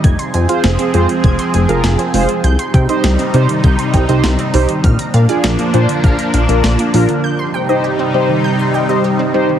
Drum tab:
HH |xxxxxxxxxxxxxxox|xxxxxxxxxxxxxxox|xxxxxxxxxxxxxxox|----------------|
SD |----o-------o---|----o-------o---|----o-------o---|----------------|
BD |o-------o-------|--o-----o-o-----|o-------o-------|----------------|